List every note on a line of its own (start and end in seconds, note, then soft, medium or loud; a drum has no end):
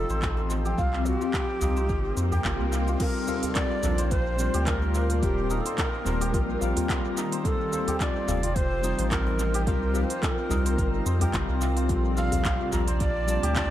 0.00 0.78 F3 loud
0.00 5.98 C4 medium
0.00 1.61 D#4 medium
0.00 0.78 F4 medium
0.00 0.65 G4 medium
0.00 1.67 G4 medium
0.00 0.46 A4 loud
0.00 0.78 D#5 medium
0.00 1.06 F5 medium
0.09 0.74 A1 medium
0.09 0.50 C5 loud
0.09 shaker soft
0.22 kick medium
0.22 clap medium
0.22 shaker soft
0.37 djembe tone medium
0.50 1.76 C5 medium
0.50 shaker medium
0.65 2.31 G4 medium
0.65 shaker soft
0.78 1.17 C2 loud
0.78 3.00 C3 medium
0.78 1.21 F4 medium
0.78 1.08 F5 loud
0.78 kick loud
0.78 shaker soft
0.93 clap soft
1.06 1.18 F#4 loud
1.06 2.72 F5 medium
1.06 djembe slap soft
1.06 djembe tone medium
1.06 shaker medium
1.16 3.00 D#4 medium
1.16 2.73 G4 loud
1.16 3.00 A#4 medium
1.21 2.44 F4 medium
1.21 djembe tone medium
1.21 shaker soft
1.34 kick loud
1.34 clap loud
1.34 shaker soft
1.60 1.91 C2 loud
1.60 3.89 D#4 medium
1.60 6.12 D5 medium
1.60 djembe slap soft
1.60 djembe bass medium
1.60 shaker medium
1.76 2.16 C5 medium
1.76 djembe tone medium
1.76 shaker soft
1.89 2.12 G1 medium
1.89 kick medium
1.89 swell medium
1.89 shaker soft
2.17 2.40 F2 loud
2.17 3.98 C5 medium
2.17 shaker medium
2.32 4.54 G4 loud
2.32 djembe tone soft
2.32 djembe bass medium
2.32 shaker soft
2.44 2.57 G1 medium
2.44 2.87 F4 medium
2.44 kick loud
2.44 clap medium
2.44 shaker soft
2.60 2.97 C2 medium
2.72 3.28 F5 medium
2.72 shaker medium
2.88 3.00 F4 medium
2.88 shaker soft
2.99 5.22 A#2 medium
2.99 3.25 G3 medium
2.99 3.25 C4 medium
2.99 3.43 F4 medium
2.99 3.25 F4 medium
2.99 3.26 A4 medium
2.99 3.52 A#4 loud
2.99 kick loud
2.99 open hi-hat soft
2.99 crash loud
2.99 shaker soft
3.06 7.45 A#3 medium
3.27 3.80 G3 medium
3.27 3.80 C4 medium
3.27 3.81 F4 medium
3.27 3.81 A4 loud
3.27 4.94 F5 medium
3.27 djembe slap soft
3.27 djembe tone medium
3.27 shaker medium
3.43 4.67 F4 medium
3.43 open hi-hat medium
3.43 djembe tone medium
3.43 djembe bass medium
3.43 shaker soft
3.55 4.13 D5 loud
3.55 6.12 A5 medium
3.55 kick loud
3.55 clap loud
3.55 open hi-hat soft
3.55 shaker soft
3.82 4.50 A#1 loud
3.82 3.95 G3 medium
3.82 3.95 C4 medium
3.82 5.56 D4 medium
3.82 3.95 F4 medium
3.82 3.96 A4 medium
3.82 djembe bass medium
3.82 shaker medium
3.98 4.39 C5 loud
3.98 open hi-hat medium
3.98 djembe tone medium
3.98 shaker soft
4.11 4.69 C5 loud
4.11 kick loud
4.11 open hi-hat soft
4.11 shaker soft
4.37 5.18 G3 medium
4.37 5.19 C4 medium
4.37 5.20 F4 medium
4.37 5.20 A#4 medium
4.37 5.65 C5 medium
4.37 shaker medium
4.54 5.24 D2 loud
4.54 6.20 G4 loud
4.54 open hi-hat medium
4.54 shaker soft
4.67 5.09 F4 medium
4.67 5.22 A#4 loud
4.67 kick loud
4.67 clap loud
4.67 open hi-hat soft
4.67 shaker soft
4.82 djembe tone medium
4.95 6.61 F5 medium
4.95 shaker medium
5.10 6.33 F4 medium
5.10 open hi-hat medium
5.10 shaker soft
5.21 5.61 D#1 loud
5.21 7.45 D#3 medium
5.21 5.47 G3 medium
5.21 5.47 C4 medium
5.21 5.47 F4 medium
5.21 5.62 G4 medium
5.21 5.48 A#4 loud
5.21 kick loud
5.21 open hi-hat soft
5.21 shaker soft
5.49 5.57 G3 medium
5.49 5.57 C4 medium
5.49 7.17 D#4 medium
5.49 5.58 F4 medium
5.49 8.34 G4 medium
5.49 5.58 A#4 loud
5.49 8.19 F5 medium
5.49 djembe tone medium
5.49 shaker medium
5.60 5.80 A4 medium
5.65 6.05 C5 medium
5.65 open hi-hat medium
5.65 shaker soft
5.78 6.62 A#4 medium
5.78 kick loud
5.78 clap loud
5.78 open hi-hat soft
5.78 shaker soft
6.05 6.35 D#1 loud
6.05 6.58 G3 medium
6.05 6.58 C4 medium
6.05 6.58 F4 medium
6.05 6.59 A#4 loud
6.05 7.32 C5 medium
6.05 djembe slap soft
6.05 djembe bass medium
6.05 shaker medium
6.21 7.87 G4 loud
6.21 open hi-hat medium
6.21 djembe tone medium
6.21 shaker soft
6.33 6.57 A#1 loud
6.33 6.76 F4 medium
6.33 kick loud
6.33 open hi-hat soft
6.33 shaker soft
6.59 6.74 A#1 medium
6.59 7.41 G3 medium
6.59 7.41 C4 medium
6.59 7.42 F4 medium
6.59 7.43 A#4 loud
6.59 8.28 F5 medium
6.59 shaker medium
6.76 8.00 F4 medium
6.76 open hi-hat medium
6.76 djembe tone soft
6.76 djembe bass medium
6.76 shaker soft
6.89 kick loud
6.89 clap loud
6.89 open hi-hat soft
6.89 shaker soft
7.17 8.83 D#4 medium
7.17 shaker medium
7.32 7.72 C5 medium
7.32 open hi-hat medium
7.32 shaker soft
7.44 9.67 F3 medium
7.44 7.69 G3 medium
7.44 7.69 C4 medium
7.44 7.70 F4 medium
7.44 7.96 A4 loud
7.44 7.70 A4 loud
7.44 kick loud
7.44 open hi-hat soft
7.44 shaker soft
7.54 11.89 D#4 medium
7.66 13.70 C4 medium
7.72 8.25 G3 loud
7.72 8.25 C4 medium
7.72 8.25 F4 medium
7.72 8.26 A4 loud
7.72 8.99 C5 medium
7.72 djembe slap soft
7.72 djembe tone medium
7.72 shaker medium
7.81 9.67 A5 medium
7.87 9.54 G4 medium
7.87 open hi-hat medium
7.87 djembe tone medium
7.87 djembe bass medium
7.87 shaker soft
8.00 8.43 F4 medium
8.00 8.57 D5 loud
8.00 kick loud
8.00 clap loud
8.00 open hi-hat soft
8.00 shaker soft
8.19 10.56 G5 medium
8.27 8.94 F1 loud
8.27 8.39 G3 medium
8.27 8.40 C4 medium
8.27 8.40 F4 medium
8.27 8.40 A4 medium
8.27 9.95 F5 medium
8.27 djembe bass medium
8.27 shaker medium
8.43 9.67 F4 medium
8.43 open hi-hat medium
8.43 djembe tone medium
8.43 shaker soft
8.55 9.09 C5 loud
8.55 kick loud
8.55 open hi-hat soft
8.55 shaker soft
8.82 9.63 G3 medium
8.82 9.64 C4 medium
8.82 10.50 D#4 medium
8.82 9.64 F4 medium
8.82 9.65 C5 medium
8.82 shaker medium
8.99 9.69 A1 loud
8.99 9.39 C5 medium
8.99 open hi-hat medium
8.99 shaker soft
9.10 9.62 A#4 loud
9.10 kick loud
9.10 clap loud
9.10 open hi-hat soft
9.10 shaker soft
9.27 djembe tone medium
9.39 10.65 C5 medium
9.39 shaker medium
9.54 11.21 G4 loud
9.54 open hi-hat medium
9.54 shaker soft
9.66 10.06 C2 loud
9.66 11.89 C3 medium
9.66 9.91 G3 medium
9.66 9.92 C4 medium
9.66 10.09 F4 medium
9.66 9.92 F4 medium
9.66 10.05 A#4 loud
9.66 9.93 A#4 loud
9.66 kick loud
9.66 open hi-hat soft
9.66 shaker soft
9.80 11.89 A#4 medium
9.94 10.02 G3 medium
9.94 10.02 C4 medium
9.94 10.02 F4 medium
9.94 10.03 A#4 medium
9.94 11.61 F5 medium
9.94 djembe tone medium
9.94 shaker medium
10.04 10.24 C5 medium
10.10 11.33 F4 medium
10.10 open hi-hat medium
10.10 shaker soft
10.20 11.06 A#4 medium
10.20 13.70 D5 medium
10.20 kick loud
10.20 clap loud
10.20 open hi-hat soft
10.20 shaker soft
10.49 10.80 C2 loud
10.49 11.02 G3 medium
10.49 11.03 C4 medium
10.49 13.70 D#4 medium
10.49 11.03 F4 medium
10.49 11.03 A#4 loud
10.49 djembe slap soft
10.49 djembe bass medium
10.49 shaker medium
10.65 11.05 C5 loud
10.65 open hi-hat medium
10.65 djembe tone medium
10.65 shaker soft
10.78 11.01 G1 medium
10.78 kick loud
10.78 open hi-hat soft
10.78 shaker soft
11.06 11.29 F2 loud
11.06 12.87 C5 medium
11.06 shaker medium
11.19 11.85 G3 medium
11.19 11.86 C4 medium
11.19 11.87 F4 medium
11.19 13.43 G4 loud
11.19 11.87 A#4 loud
11.19 open hi-hat soft
11.19 djembe tone soft
11.19 djembe bass medium
11.19 shaker soft
11.33 11.46 G1 medium
11.33 11.76 F4 medium
11.33 kick loud
11.33 clap medium
11.33 open hi-hat soft
11.33 shaker soft
11.49 11.91 C2 loud
11.61 12.16 F5 medium
11.61 shaker medium
11.77 11.89 F4 medium
11.77 open hi-hat soft
11.77 shaker soft
11.88 12.56 A#1 medium
11.88 13.70 A#2 medium
11.88 12.13 G3 medium
11.88 12.14 C4 medium
11.88 13.70 D4 medium
11.88 12.31 F4 medium
11.88 12.14 F4 medium
11.88 12.14 A4 medium
11.88 13.70 D5 medium
11.88 kick loud
11.88 open hi-hat soft
11.88 shaker soft
12.16 12.69 G3 medium
12.16 13.70 A#3 medium
12.16 12.69 C4 medium
12.16 12.70 F4 medium
12.16 12.70 A4 medium
12.16 13.70 F5 medium
12.16 12.69 F5 loud
12.16 djembe slap soft
12.16 djembe tone medium
12.16 shaker medium
12.32 13.56 F4 medium
12.32 13.70 A5 medium
12.32 open hi-hat medium
12.32 djembe tone medium
12.32 djembe bass medium
12.32 shaker soft
12.45 kick loud
12.45 clap medium
12.45 open hi-hat soft
12.45 shaker soft
12.71 13.39 A#1 loud
12.71 12.84 G3 medium
12.71 12.84 C4 medium
12.71 12.84 F4 medium
12.71 12.85 A4 medium
12.71 13.70 A#4 medium
12.71 djembe bass medium
12.71 shaker medium
12.87 13.28 C5 loud
12.87 open hi-hat medium
12.87 djembe tone medium
12.87 shaker soft
13.00 13.52 D5 loud
13.00 kick loud
13.00 open hi-hat soft
13.00 shaker soft
13.26 13.70 G3 medium
13.26 13.70 C4 medium
13.26 13.70 F4 medium
13.26 13.70 C5 medium
13.26 shaker medium
13.30 13.70 A5 loud
13.43 13.70 D2 loud
13.43 13.70 G4 loud
13.43 open hi-hat medium
13.43 shaker soft
13.56 13.70 F4 medium
13.56 13.70 D5 loud
13.56 kick loud
13.56 clap medium
13.56 open hi-hat soft
13.56 shaker soft